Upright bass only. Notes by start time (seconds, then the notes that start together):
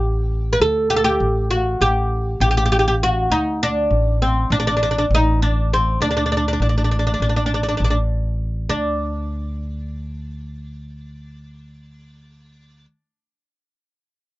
Already playing: A1
0.60 D2
1.20 A1
1.81 A1
2.40 A1
3.30 D2
3.91 A1
4.50 A1
5.11 A1
6.01 D2
6.60 A1
7.20 A1
7.80 A1
8.69 D2